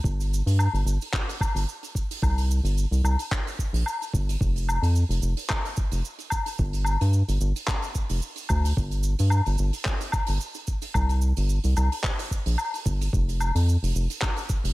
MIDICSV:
0, 0, Header, 1, 3, 480
1, 0, Start_track
1, 0, Key_signature, -2, "minor"
1, 0, Tempo, 545455
1, 37, Time_signature, 4, 2, 24, 8
1, 12962, End_track
2, 0, Start_track
2, 0, Title_t, "Analog synth bass"
2, 0, Program_c, 0, 38
2, 37, Note_on_c, 0, 31, 96
2, 369, Note_off_c, 0, 31, 0
2, 408, Note_on_c, 0, 43, 90
2, 599, Note_off_c, 0, 43, 0
2, 646, Note_on_c, 0, 31, 91
2, 735, Note_off_c, 0, 31, 0
2, 752, Note_on_c, 0, 31, 93
2, 861, Note_off_c, 0, 31, 0
2, 1363, Note_on_c, 0, 31, 87
2, 1454, Note_off_c, 0, 31, 0
2, 1958, Note_on_c, 0, 36, 100
2, 2290, Note_off_c, 0, 36, 0
2, 2319, Note_on_c, 0, 31, 92
2, 2514, Note_off_c, 0, 31, 0
2, 2564, Note_on_c, 0, 36, 84
2, 2654, Note_off_c, 0, 36, 0
2, 2672, Note_on_c, 0, 36, 91
2, 2782, Note_off_c, 0, 36, 0
2, 3283, Note_on_c, 0, 34, 89
2, 3374, Note_off_c, 0, 34, 0
2, 3640, Note_on_c, 0, 31, 95
2, 3838, Note_off_c, 0, 31, 0
2, 3879, Note_on_c, 0, 29, 95
2, 4210, Note_off_c, 0, 29, 0
2, 4243, Note_on_c, 0, 41, 83
2, 4436, Note_off_c, 0, 41, 0
2, 4481, Note_on_c, 0, 29, 88
2, 4573, Note_off_c, 0, 29, 0
2, 4593, Note_on_c, 0, 29, 87
2, 4702, Note_off_c, 0, 29, 0
2, 5209, Note_on_c, 0, 29, 89
2, 5297, Note_off_c, 0, 29, 0
2, 5798, Note_on_c, 0, 31, 98
2, 6129, Note_off_c, 0, 31, 0
2, 6170, Note_on_c, 0, 43, 88
2, 6360, Note_off_c, 0, 43, 0
2, 6410, Note_on_c, 0, 31, 84
2, 6497, Note_off_c, 0, 31, 0
2, 6518, Note_on_c, 0, 31, 95
2, 6624, Note_off_c, 0, 31, 0
2, 7127, Note_on_c, 0, 29, 89
2, 7216, Note_off_c, 0, 29, 0
2, 7479, Note_on_c, 0, 38, 101
2, 7677, Note_off_c, 0, 38, 0
2, 7718, Note_on_c, 0, 31, 97
2, 8049, Note_off_c, 0, 31, 0
2, 8092, Note_on_c, 0, 43, 89
2, 8281, Note_off_c, 0, 43, 0
2, 8330, Note_on_c, 0, 31, 87
2, 8417, Note_off_c, 0, 31, 0
2, 8439, Note_on_c, 0, 31, 92
2, 8545, Note_off_c, 0, 31, 0
2, 9051, Note_on_c, 0, 31, 81
2, 9138, Note_off_c, 0, 31, 0
2, 9634, Note_on_c, 0, 36, 104
2, 9967, Note_off_c, 0, 36, 0
2, 10008, Note_on_c, 0, 31, 91
2, 10199, Note_off_c, 0, 31, 0
2, 10245, Note_on_c, 0, 36, 87
2, 10335, Note_off_c, 0, 36, 0
2, 10357, Note_on_c, 0, 36, 94
2, 10464, Note_off_c, 0, 36, 0
2, 10966, Note_on_c, 0, 34, 93
2, 11055, Note_off_c, 0, 34, 0
2, 11315, Note_on_c, 0, 31, 102
2, 11515, Note_off_c, 0, 31, 0
2, 11556, Note_on_c, 0, 29, 100
2, 11889, Note_off_c, 0, 29, 0
2, 11924, Note_on_c, 0, 41, 90
2, 12117, Note_off_c, 0, 41, 0
2, 12167, Note_on_c, 0, 29, 85
2, 12256, Note_off_c, 0, 29, 0
2, 12275, Note_on_c, 0, 29, 89
2, 12383, Note_off_c, 0, 29, 0
2, 12883, Note_on_c, 0, 29, 83
2, 12962, Note_off_c, 0, 29, 0
2, 12962, End_track
3, 0, Start_track
3, 0, Title_t, "Drums"
3, 37, Note_on_c, 9, 36, 123
3, 46, Note_on_c, 9, 69, 66
3, 125, Note_off_c, 9, 36, 0
3, 134, Note_off_c, 9, 69, 0
3, 180, Note_on_c, 9, 69, 45
3, 181, Note_on_c, 9, 46, 50
3, 268, Note_off_c, 9, 69, 0
3, 269, Note_off_c, 9, 46, 0
3, 298, Note_on_c, 9, 69, 82
3, 386, Note_off_c, 9, 69, 0
3, 412, Note_on_c, 9, 46, 72
3, 421, Note_on_c, 9, 69, 52
3, 500, Note_off_c, 9, 46, 0
3, 509, Note_off_c, 9, 69, 0
3, 520, Note_on_c, 9, 77, 76
3, 526, Note_on_c, 9, 69, 62
3, 608, Note_off_c, 9, 77, 0
3, 614, Note_off_c, 9, 69, 0
3, 653, Note_on_c, 9, 46, 57
3, 663, Note_on_c, 9, 69, 42
3, 741, Note_off_c, 9, 46, 0
3, 751, Note_off_c, 9, 69, 0
3, 769, Note_on_c, 9, 69, 83
3, 857, Note_off_c, 9, 69, 0
3, 894, Note_on_c, 9, 69, 49
3, 897, Note_on_c, 9, 46, 64
3, 982, Note_off_c, 9, 69, 0
3, 985, Note_off_c, 9, 46, 0
3, 998, Note_on_c, 9, 36, 117
3, 999, Note_on_c, 9, 39, 80
3, 1011, Note_on_c, 9, 69, 65
3, 1086, Note_off_c, 9, 36, 0
3, 1087, Note_off_c, 9, 39, 0
3, 1099, Note_off_c, 9, 69, 0
3, 1132, Note_on_c, 9, 46, 57
3, 1144, Note_on_c, 9, 69, 44
3, 1220, Note_off_c, 9, 46, 0
3, 1232, Note_off_c, 9, 69, 0
3, 1238, Note_on_c, 9, 36, 104
3, 1242, Note_on_c, 9, 77, 76
3, 1253, Note_on_c, 9, 69, 88
3, 1326, Note_off_c, 9, 36, 0
3, 1330, Note_off_c, 9, 77, 0
3, 1341, Note_off_c, 9, 69, 0
3, 1373, Note_on_c, 9, 46, 75
3, 1376, Note_on_c, 9, 69, 53
3, 1461, Note_off_c, 9, 46, 0
3, 1464, Note_off_c, 9, 69, 0
3, 1486, Note_on_c, 9, 69, 51
3, 1574, Note_off_c, 9, 69, 0
3, 1607, Note_on_c, 9, 46, 51
3, 1622, Note_on_c, 9, 69, 43
3, 1695, Note_off_c, 9, 46, 0
3, 1710, Note_off_c, 9, 69, 0
3, 1717, Note_on_c, 9, 36, 65
3, 1727, Note_on_c, 9, 69, 94
3, 1805, Note_off_c, 9, 36, 0
3, 1815, Note_off_c, 9, 69, 0
3, 1854, Note_on_c, 9, 46, 76
3, 1860, Note_on_c, 9, 69, 60
3, 1942, Note_off_c, 9, 46, 0
3, 1948, Note_off_c, 9, 69, 0
3, 1958, Note_on_c, 9, 36, 118
3, 1963, Note_on_c, 9, 77, 69
3, 1966, Note_on_c, 9, 69, 57
3, 2046, Note_off_c, 9, 36, 0
3, 2051, Note_off_c, 9, 77, 0
3, 2054, Note_off_c, 9, 69, 0
3, 2091, Note_on_c, 9, 46, 53
3, 2096, Note_on_c, 9, 69, 45
3, 2179, Note_off_c, 9, 46, 0
3, 2184, Note_off_c, 9, 69, 0
3, 2210, Note_on_c, 9, 69, 87
3, 2298, Note_off_c, 9, 69, 0
3, 2327, Note_on_c, 9, 46, 62
3, 2339, Note_on_c, 9, 69, 47
3, 2415, Note_off_c, 9, 46, 0
3, 2427, Note_off_c, 9, 69, 0
3, 2445, Note_on_c, 9, 69, 62
3, 2533, Note_off_c, 9, 69, 0
3, 2569, Note_on_c, 9, 46, 62
3, 2578, Note_on_c, 9, 69, 47
3, 2657, Note_off_c, 9, 46, 0
3, 2666, Note_off_c, 9, 69, 0
3, 2681, Note_on_c, 9, 77, 76
3, 2686, Note_on_c, 9, 69, 88
3, 2769, Note_off_c, 9, 77, 0
3, 2774, Note_off_c, 9, 69, 0
3, 2806, Note_on_c, 9, 46, 61
3, 2815, Note_on_c, 9, 69, 52
3, 2894, Note_off_c, 9, 46, 0
3, 2903, Note_off_c, 9, 69, 0
3, 2917, Note_on_c, 9, 36, 127
3, 2924, Note_on_c, 9, 39, 83
3, 2930, Note_on_c, 9, 69, 56
3, 3005, Note_off_c, 9, 36, 0
3, 3012, Note_off_c, 9, 39, 0
3, 3018, Note_off_c, 9, 69, 0
3, 3052, Note_on_c, 9, 46, 64
3, 3061, Note_on_c, 9, 69, 39
3, 3140, Note_off_c, 9, 46, 0
3, 3149, Note_off_c, 9, 69, 0
3, 3158, Note_on_c, 9, 36, 60
3, 3167, Note_on_c, 9, 69, 86
3, 3246, Note_off_c, 9, 36, 0
3, 3255, Note_off_c, 9, 69, 0
3, 3288, Note_on_c, 9, 46, 76
3, 3306, Note_on_c, 9, 69, 49
3, 3376, Note_off_c, 9, 46, 0
3, 3394, Note_off_c, 9, 69, 0
3, 3397, Note_on_c, 9, 77, 71
3, 3412, Note_on_c, 9, 69, 65
3, 3485, Note_off_c, 9, 77, 0
3, 3500, Note_off_c, 9, 69, 0
3, 3533, Note_on_c, 9, 46, 46
3, 3540, Note_on_c, 9, 69, 47
3, 3621, Note_off_c, 9, 46, 0
3, 3628, Note_off_c, 9, 69, 0
3, 3639, Note_on_c, 9, 36, 106
3, 3648, Note_on_c, 9, 69, 92
3, 3727, Note_off_c, 9, 36, 0
3, 3736, Note_off_c, 9, 69, 0
3, 3772, Note_on_c, 9, 46, 65
3, 3783, Note_on_c, 9, 69, 59
3, 3860, Note_off_c, 9, 46, 0
3, 3871, Note_off_c, 9, 69, 0
3, 3879, Note_on_c, 9, 36, 115
3, 3888, Note_on_c, 9, 69, 58
3, 3967, Note_off_c, 9, 36, 0
3, 3976, Note_off_c, 9, 69, 0
3, 4009, Note_on_c, 9, 46, 49
3, 4027, Note_on_c, 9, 69, 41
3, 4097, Note_off_c, 9, 46, 0
3, 4115, Note_off_c, 9, 69, 0
3, 4124, Note_on_c, 9, 77, 75
3, 4129, Note_on_c, 9, 69, 85
3, 4212, Note_off_c, 9, 77, 0
3, 4217, Note_off_c, 9, 69, 0
3, 4250, Note_on_c, 9, 46, 67
3, 4259, Note_on_c, 9, 69, 49
3, 4338, Note_off_c, 9, 46, 0
3, 4347, Note_off_c, 9, 69, 0
3, 4362, Note_on_c, 9, 69, 55
3, 4450, Note_off_c, 9, 69, 0
3, 4490, Note_on_c, 9, 46, 61
3, 4498, Note_on_c, 9, 69, 41
3, 4578, Note_off_c, 9, 46, 0
3, 4586, Note_off_c, 9, 69, 0
3, 4598, Note_on_c, 9, 69, 91
3, 4686, Note_off_c, 9, 69, 0
3, 4722, Note_on_c, 9, 46, 67
3, 4739, Note_on_c, 9, 69, 45
3, 4810, Note_off_c, 9, 46, 0
3, 4827, Note_off_c, 9, 69, 0
3, 4834, Note_on_c, 9, 77, 74
3, 4836, Note_on_c, 9, 39, 83
3, 4841, Note_on_c, 9, 36, 122
3, 4845, Note_on_c, 9, 69, 58
3, 4922, Note_off_c, 9, 77, 0
3, 4924, Note_off_c, 9, 39, 0
3, 4929, Note_off_c, 9, 36, 0
3, 4933, Note_off_c, 9, 69, 0
3, 4970, Note_on_c, 9, 46, 59
3, 4979, Note_on_c, 9, 69, 44
3, 5058, Note_off_c, 9, 46, 0
3, 5067, Note_off_c, 9, 69, 0
3, 5075, Note_on_c, 9, 69, 82
3, 5081, Note_on_c, 9, 36, 108
3, 5163, Note_off_c, 9, 69, 0
3, 5169, Note_off_c, 9, 36, 0
3, 5202, Note_on_c, 9, 46, 62
3, 5211, Note_on_c, 9, 69, 55
3, 5290, Note_off_c, 9, 46, 0
3, 5299, Note_off_c, 9, 69, 0
3, 5323, Note_on_c, 9, 69, 60
3, 5411, Note_off_c, 9, 69, 0
3, 5440, Note_on_c, 9, 46, 46
3, 5458, Note_on_c, 9, 69, 42
3, 5528, Note_off_c, 9, 46, 0
3, 5546, Note_off_c, 9, 69, 0
3, 5547, Note_on_c, 9, 77, 85
3, 5558, Note_on_c, 9, 69, 85
3, 5561, Note_on_c, 9, 36, 62
3, 5635, Note_off_c, 9, 77, 0
3, 5646, Note_off_c, 9, 69, 0
3, 5649, Note_off_c, 9, 36, 0
3, 5682, Note_on_c, 9, 46, 68
3, 5695, Note_on_c, 9, 69, 54
3, 5770, Note_off_c, 9, 46, 0
3, 5783, Note_off_c, 9, 69, 0
3, 5795, Note_on_c, 9, 69, 55
3, 5800, Note_on_c, 9, 36, 119
3, 5883, Note_off_c, 9, 69, 0
3, 5888, Note_off_c, 9, 36, 0
3, 5920, Note_on_c, 9, 46, 44
3, 5933, Note_on_c, 9, 69, 41
3, 6008, Note_off_c, 9, 46, 0
3, 6021, Note_off_c, 9, 69, 0
3, 6024, Note_on_c, 9, 77, 76
3, 6041, Note_on_c, 9, 69, 80
3, 6112, Note_off_c, 9, 77, 0
3, 6129, Note_off_c, 9, 69, 0
3, 6166, Note_on_c, 9, 46, 66
3, 6178, Note_on_c, 9, 69, 47
3, 6254, Note_off_c, 9, 46, 0
3, 6266, Note_off_c, 9, 69, 0
3, 6277, Note_on_c, 9, 69, 59
3, 6365, Note_off_c, 9, 69, 0
3, 6408, Note_on_c, 9, 46, 61
3, 6414, Note_on_c, 9, 69, 43
3, 6496, Note_off_c, 9, 46, 0
3, 6502, Note_off_c, 9, 69, 0
3, 6520, Note_on_c, 9, 69, 79
3, 6608, Note_off_c, 9, 69, 0
3, 6650, Note_on_c, 9, 46, 59
3, 6655, Note_on_c, 9, 69, 45
3, 6738, Note_off_c, 9, 46, 0
3, 6743, Note_off_c, 9, 69, 0
3, 6749, Note_on_c, 9, 77, 72
3, 6754, Note_on_c, 9, 39, 77
3, 6759, Note_on_c, 9, 36, 117
3, 6759, Note_on_c, 9, 69, 65
3, 6837, Note_off_c, 9, 77, 0
3, 6842, Note_off_c, 9, 39, 0
3, 6847, Note_off_c, 9, 36, 0
3, 6847, Note_off_c, 9, 69, 0
3, 6881, Note_on_c, 9, 46, 57
3, 6895, Note_on_c, 9, 69, 46
3, 6969, Note_off_c, 9, 46, 0
3, 6983, Note_off_c, 9, 69, 0
3, 6996, Note_on_c, 9, 69, 79
3, 6998, Note_on_c, 9, 36, 59
3, 7084, Note_off_c, 9, 69, 0
3, 7086, Note_off_c, 9, 36, 0
3, 7121, Note_on_c, 9, 46, 67
3, 7130, Note_on_c, 9, 69, 46
3, 7209, Note_off_c, 9, 46, 0
3, 7218, Note_off_c, 9, 69, 0
3, 7236, Note_on_c, 9, 69, 61
3, 7324, Note_off_c, 9, 69, 0
3, 7350, Note_on_c, 9, 46, 53
3, 7371, Note_on_c, 9, 69, 47
3, 7438, Note_off_c, 9, 46, 0
3, 7459, Note_off_c, 9, 69, 0
3, 7470, Note_on_c, 9, 77, 75
3, 7476, Note_on_c, 9, 69, 83
3, 7478, Note_on_c, 9, 36, 103
3, 7558, Note_off_c, 9, 77, 0
3, 7564, Note_off_c, 9, 69, 0
3, 7566, Note_off_c, 9, 36, 0
3, 7609, Note_on_c, 9, 46, 67
3, 7616, Note_on_c, 9, 69, 53
3, 7697, Note_off_c, 9, 46, 0
3, 7704, Note_off_c, 9, 69, 0
3, 7718, Note_on_c, 9, 36, 117
3, 7724, Note_on_c, 9, 69, 60
3, 7806, Note_off_c, 9, 36, 0
3, 7812, Note_off_c, 9, 69, 0
3, 7840, Note_on_c, 9, 46, 50
3, 7849, Note_on_c, 9, 69, 37
3, 7928, Note_off_c, 9, 46, 0
3, 7937, Note_off_c, 9, 69, 0
3, 7949, Note_on_c, 9, 69, 84
3, 8037, Note_off_c, 9, 69, 0
3, 8082, Note_on_c, 9, 46, 71
3, 8090, Note_on_c, 9, 69, 54
3, 8170, Note_off_c, 9, 46, 0
3, 8178, Note_off_c, 9, 69, 0
3, 8186, Note_on_c, 9, 77, 81
3, 8197, Note_on_c, 9, 69, 62
3, 8274, Note_off_c, 9, 77, 0
3, 8285, Note_off_c, 9, 69, 0
3, 8322, Note_on_c, 9, 46, 60
3, 8327, Note_on_c, 9, 69, 38
3, 8410, Note_off_c, 9, 46, 0
3, 8415, Note_off_c, 9, 69, 0
3, 8433, Note_on_c, 9, 69, 79
3, 8521, Note_off_c, 9, 69, 0
3, 8559, Note_on_c, 9, 46, 65
3, 8568, Note_on_c, 9, 69, 47
3, 8647, Note_off_c, 9, 46, 0
3, 8656, Note_off_c, 9, 69, 0
3, 8668, Note_on_c, 9, 39, 68
3, 8675, Note_on_c, 9, 36, 122
3, 8683, Note_on_c, 9, 69, 57
3, 8756, Note_off_c, 9, 39, 0
3, 8763, Note_off_c, 9, 36, 0
3, 8771, Note_off_c, 9, 69, 0
3, 8803, Note_on_c, 9, 46, 58
3, 8809, Note_on_c, 9, 69, 45
3, 8891, Note_off_c, 9, 46, 0
3, 8897, Note_off_c, 9, 69, 0
3, 8907, Note_on_c, 9, 77, 88
3, 8916, Note_on_c, 9, 36, 98
3, 8916, Note_on_c, 9, 69, 94
3, 8995, Note_off_c, 9, 77, 0
3, 9004, Note_off_c, 9, 36, 0
3, 9004, Note_off_c, 9, 69, 0
3, 9030, Note_on_c, 9, 46, 73
3, 9047, Note_on_c, 9, 69, 50
3, 9118, Note_off_c, 9, 46, 0
3, 9135, Note_off_c, 9, 69, 0
3, 9159, Note_on_c, 9, 69, 60
3, 9247, Note_off_c, 9, 69, 0
3, 9280, Note_on_c, 9, 46, 50
3, 9280, Note_on_c, 9, 69, 44
3, 9368, Note_off_c, 9, 46, 0
3, 9368, Note_off_c, 9, 69, 0
3, 9391, Note_on_c, 9, 69, 81
3, 9396, Note_on_c, 9, 36, 59
3, 9479, Note_off_c, 9, 69, 0
3, 9484, Note_off_c, 9, 36, 0
3, 9517, Note_on_c, 9, 46, 75
3, 9522, Note_on_c, 9, 69, 50
3, 9605, Note_off_c, 9, 46, 0
3, 9610, Note_off_c, 9, 69, 0
3, 9629, Note_on_c, 9, 77, 82
3, 9635, Note_on_c, 9, 36, 111
3, 9639, Note_on_c, 9, 69, 60
3, 9717, Note_off_c, 9, 77, 0
3, 9723, Note_off_c, 9, 36, 0
3, 9727, Note_off_c, 9, 69, 0
3, 9758, Note_on_c, 9, 46, 49
3, 9767, Note_on_c, 9, 69, 47
3, 9846, Note_off_c, 9, 46, 0
3, 9855, Note_off_c, 9, 69, 0
3, 9870, Note_on_c, 9, 69, 85
3, 9958, Note_off_c, 9, 69, 0
3, 10000, Note_on_c, 9, 46, 62
3, 10005, Note_on_c, 9, 69, 48
3, 10088, Note_off_c, 9, 46, 0
3, 10093, Note_off_c, 9, 69, 0
3, 10114, Note_on_c, 9, 69, 57
3, 10202, Note_off_c, 9, 69, 0
3, 10238, Note_on_c, 9, 46, 68
3, 10245, Note_on_c, 9, 69, 42
3, 10326, Note_off_c, 9, 46, 0
3, 10333, Note_off_c, 9, 69, 0
3, 10355, Note_on_c, 9, 77, 75
3, 10357, Note_on_c, 9, 69, 85
3, 10443, Note_off_c, 9, 77, 0
3, 10445, Note_off_c, 9, 69, 0
3, 10487, Note_on_c, 9, 46, 68
3, 10494, Note_on_c, 9, 69, 50
3, 10575, Note_off_c, 9, 46, 0
3, 10582, Note_off_c, 9, 69, 0
3, 10593, Note_on_c, 9, 39, 74
3, 10594, Note_on_c, 9, 36, 115
3, 10606, Note_on_c, 9, 69, 54
3, 10681, Note_off_c, 9, 39, 0
3, 10682, Note_off_c, 9, 36, 0
3, 10694, Note_off_c, 9, 69, 0
3, 10725, Note_on_c, 9, 46, 68
3, 10734, Note_on_c, 9, 69, 41
3, 10813, Note_off_c, 9, 46, 0
3, 10822, Note_off_c, 9, 69, 0
3, 10834, Note_on_c, 9, 36, 57
3, 10842, Note_on_c, 9, 69, 90
3, 10922, Note_off_c, 9, 36, 0
3, 10930, Note_off_c, 9, 69, 0
3, 10961, Note_on_c, 9, 46, 67
3, 10976, Note_on_c, 9, 69, 53
3, 11049, Note_off_c, 9, 46, 0
3, 11064, Note_off_c, 9, 69, 0
3, 11070, Note_on_c, 9, 77, 77
3, 11075, Note_on_c, 9, 69, 57
3, 11158, Note_off_c, 9, 77, 0
3, 11163, Note_off_c, 9, 69, 0
3, 11207, Note_on_c, 9, 46, 60
3, 11219, Note_on_c, 9, 69, 44
3, 11295, Note_off_c, 9, 46, 0
3, 11307, Note_off_c, 9, 69, 0
3, 11314, Note_on_c, 9, 36, 99
3, 11317, Note_on_c, 9, 69, 91
3, 11402, Note_off_c, 9, 36, 0
3, 11405, Note_off_c, 9, 69, 0
3, 11449, Note_on_c, 9, 46, 66
3, 11455, Note_on_c, 9, 69, 54
3, 11537, Note_off_c, 9, 46, 0
3, 11543, Note_off_c, 9, 69, 0
3, 11555, Note_on_c, 9, 36, 115
3, 11562, Note_on_c, 9, 69, 62
3, 11643, Note_off_c, 9, 36, 0
3, 11650, Note_off_c, 9, 69, 0
3, 11690, Note_on_c, 9, 46, 56
3, 11699, Note_on_c, 9, 69, 39
3, 11778, Note_off_c, 9, 46, 0
3, 11787, Note_off_c, 9, 69, 0
3, 11796, Note_on_c, 9, 77, 70
3, 11798, Note_on_c, 9, 69, 77
3, 11884, Note_off_c, 9, 77, 0
3, 11886, Note_off_c, 9, 69, 0
3, 11927, Note_on_c, 9, 46, 74
3, 11934, Note_on_c, 9, 69, 52
3, 12015, Note_off_c, 9, 46, 0
3, 12022, Note_off_c, 9, 69, 0
3, 12047, Note_on_c, 9, 69, 56
3, 12135, Note_off_c, 9, 69, 0
3, 12174, Note_on_c, 9, 46, 69
3, 12180, Note_on_c, 9, 69, 44
3, 12262, Note_off_c, 9, 46, 0
3, 12268, Note_off_c, 9, 69, 0
3, 12283, Note_on_c, 9, 69, 88
3, 12371, Note_off_c, 9, 69, 0
3, 12405, Note_on_c, 9, 46, 61
3, 12416, Note_on_c, 9, 69, 51
3, 12493, Note_off_c, 9, 46, 0
3, 12504, Note_off_c, 9, 69, 0
3, 12510, Note_on_c, 9, 39, 81
3, 12517, Note_on_c, 9, 36, 121
3, 12517, Note_on_c, 9, 77, 82
3, 12519, Note_on_c, 9, 69, 60
3, 12598, Note_off_c, 9, 39, 0
3, 12605, Note_off_c, 9, 36, 0
3, 12605, Note_off_c, 9, 77, 0
3, 12607, Note_off_c, 9, 69, 0
3, 12639, Note_on_c, 9, 46, 66
3, 12653, Note_on_c, 9, 69, 43
3, 12727, Note_off_c, 9, 46, 0
3, 12741, Note_off_c, 9, 69, 0
3, 12754, Note_on_c, 9, 69, 84
3, 12755, Note_on_c, 9, 36, 96
3, 12842, Note_off_c, 9, 69, 0
3, 12843, Note_off_c, 9, 36, 0
3, 12887, Note_on_c, 9, 46, 78
3, 12892, Note_on_c, 9, 69, 52
3, 12962, Note_off_c, 9, 46, 0
3, 12962, Note_off_c, 9, 69, 0
3, 12962, End_track
0, 0, End_of_file